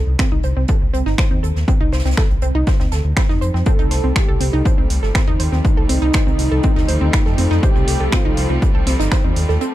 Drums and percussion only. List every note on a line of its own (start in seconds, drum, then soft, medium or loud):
0.19 finger snap loud
0.19 kick loud
0.19 snare loud
0.19 closed hi-hat medium
0.43 closed hi-hat medium
0.68 kick loud
0.68 closed hi-hat medium
0.94 closed hi-hat medium
1.07 snare soft
1.18 finger snap loud
1.18 kick loud
1.18 snare loud
1.18 closed hi-hat medium
1.44 closed hi-hat medium
1.56 snare soft
1.68 kick loud
1.68 closed hi-hat medium
1.92 snare medium
1.92 closed hi-hat medium
1.99 snare medium
1.99 closed hi-hat medium
2.05 snare medium
2.05 closed hi-hat medium
2.11 snare medium
2.11 closed hi-hat medium
2.17 finger snap loud
2.17 kick loud
2.17 snare loud
2.31 closed hi-hat soft
2.42 closed hi-hat medium
2.67 kick loud
2.67 snare loud
2.67 closed hi-hat medium
2.80 snare medium
2.92 snare medium
2.92 closed hi-hat medium
3.17 finger snap loud
3.17 kick loud
3.17 snare loud
3.17 closed hi-hat medium
3.30 snare soft
3.42 closed hi-hat medium
3.55 snare soft
3.66 kick loud
3.66 closed hi-hat medium
3.79 closed hi-hat soft
3.91 snare soft
3.91 closed hi-hat medium
3.91 open hi-hat loud
4.16 finger snap loud
4.16 kick loud
4.16 snare loud
4.16 closed hi-hat medium
4.41 closed hi-hat medium
4.41 open hi-hat medium
4.65 kick loud
4.65 closed hi-hat medium
4.90 closed hi-hat medium
4.90 open hi-hat loud
5.03 snare soft
5.15 finger snap loud
5.15 kick loud
5.15 snare loud
5.15 closed hi-hat medium
5.40 closed hi-hat medium
5.40 open hi-hat medium
5.52 snare soft
5.65 kick loud
5.65 closed hi-hat medium
5.89 closed hi-hat medium
5.89 open hi-hat medium
6.13 finger snap loud
6.13 kick loud
6.13 snare loud
6.13 closed hi-hat medium
6.28 closed hi-hat soft
6.39 closed hi-hat medium
6.39 open hi-hat medium
6.63 kick loud
6.63 closed hi-hat medium
6.78 snare medium
6.89 closed hi-hat medium
6.89 open hi-hat medium
7.13 finger snap loud
7.13 kick loud
7.13 snare loud
7.13 closed hi-hat medium
7.26 snare soft
7.38 closed hi-hat medium
7.38 open hi-hat medium
7.51 snare soft
7.63 kick loud
7.63 closed hi-hat medium
7.76 closed hi-hat soft
7.88 snare soft
7.88 closed hi-hat medium
7.88 open hi-hat loud
8.12 finger snap loud
8.12 kick loud
8.12 snare loud
8.12 closed hi-hat medium
8.37 closed hi-hat medium
8.37 open hi-hat medium
8.62 kick loud
8.62 closed hi-hat medium
8.87 snare loud
8.87 closed hi-hat medium
8.87 open hi-hat medium
9.00 snare medium
9.00 closed hi-hat medium
9.12 finger snap loud
9.12 kick loud
9.12 snare loud
9.12 closed hi-hat medium
9.36 closed hi-hat medium
9.36 open hi-hat medium
9.49 snare soft
9.61 closed hi-hat medium